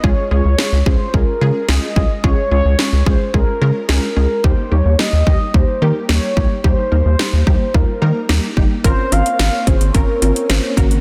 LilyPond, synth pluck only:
\new Staff \with { instrumentName = "Synth pluck" } { \time 4/4 \key bes \dorian \tempo 4 = 109 <aes des' f' aes'>8 <aes des' f' aes'>8 <aes des' f' aes'>8 <aes des' f' aes'>8 <aes des' f' aes'>8 <aes des' f' aes'>8 <aes des' f' aes'>8 <aes des' f' aes'>8 | <aes des' f' aes'>8 <aes des' f' aes'>8 <aes des' f' aes'>8 <aes des' f' aes'>8 <aes des' f' aes'>8 <aes des' f' bes'>8 <aes des' f' aes'>8 <aes des' f' aes'>8 | <g bes ees' g'>8 <g bes ees' g'>8 <g bes ees' g'>8 <g bes ees' g'>8 <g bes ees' g'>8 <g bes ees' g'>8 <g bes ees' g'>8 <g bes ees' g'>8 | <g bes ees' g'>8 <g bes ees' bes'>8 <g bes ees' g'>8 <g bes ees' g'>8 <g bes ees' f'>8 <g bes ees' bes'>8 <g bes ees' g'>8 <g bes ees' g'>8 |
<c' des' f' bes'>8 <c' des' f' bes'>8 <c' des' f' bes'>8 <c' des' f' aes'>8 <c' des' f' bes'>8 <c' des' f' bes'>8 <c' des' f' c''>8 <bes des' ges' bes'>8 | }